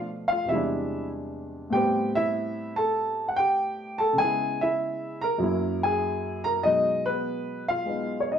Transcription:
Already playing: B2 F3 A3
0.28 F5
0.32 F4
0.45 E2 C3 E5
0.50 G3 G#3 E4
0.56 D4
1.70 A2 G3 B3 G5
1.74 C4 G4
2.15 E4 E5
2.76 A4 A5
3.28 F#5
3.36 G4 G5
3.98 A4 A5
4.13 C#3
4.17 G#3 B3 G#4 G#5
4.24 E4
4.61 E4 E5
5.21 A#4 A#5
5.38 F#2 F#3 A#3
5.43 E4
5.83 G#4 G#5
6.44 A#4 A#5
6.63 B2 F#3 G#3 D#4 D#5
7.06 B3 B4
7.68 F4 F5
7.86 G#3 B3 D#4
8.20 C#5
8.32 D#4 D#5

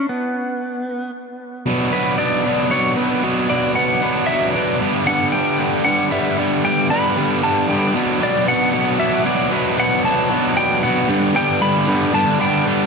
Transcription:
0.09 B3
1.66 B2 F#3 B3 D4
1.92 B2 F#3 B3 D4 B4
2.18 B2 F#3 B3 D4 D5
2.45 B2 F#3 B3 D4
2.71 B2 F#3 B3 D4 C#5
2.97 B2 F#3 B3 D4 B4
3.24 B2 F#3 B3 D4
3.50 B2 F#3 B3 D4 D5
3.75 B2 F#3 B3 D4 F#5
4.02 B2 F#3 B3 D4
4.27 B2 F#3 B3 D4 E5
4.53 B2 F#3 B3 D4 D5
4.81 G2 D3 G3 B3 D4
5.07 G2 D3 G3 B3 D4 F#5
5.32 G2 D3 G3 B3 D4 G5
5.59 G2 D3 G3 B3 D4
5.84 G2 D3 G3 B3 D4 F#5
6.11 G2 D3 G3 B3 D4 E5
6.38 G2 D3 G3 B3 D4
6.64 G2 D3 G3 B3 D4 G5
6.90 G2 D3 G3 B3 D4 B5
7.16 G2 D3 G3 B3 D4
7.42 G2 D3 G3 B3 D4 A5
7.68 G2 D3 G3 B3 D4 G5
7.95 B2 F#3 B3 D4
8.21 B2 F#3 B3 D4 D5
8.47 B2 F#3 B3 D4 F#5
8.73 B2 F#3 B3 D4
8.99 B2 F#3 B3 D4 E5
9.25 B2 F#3 B3 D4 D5
9.51 B2 F#3 B3 D4
9.78 B2 F#3 B3 D4 F#5
10.04 B2 F#3 B3 D4 A5
10.30 B2 F#3 B3 D4
10.56 B2 F#3 B3 D4 G5
10.83 B2 F#3 B3 D4 F#5
11.09 G2 D3 G3 B3 D4
11.35 G2 D3 G3 B3 D4 G5
11.61 G2 D3 G3 B3 D4 B5
11.87 G2 D3 G3 B3 D4
12.14 G2 D3 G3 B3 D4 A5
12.39 G2 D3 G3 B3 D4 G5
12.66 G2 D3 G3 B3 D4

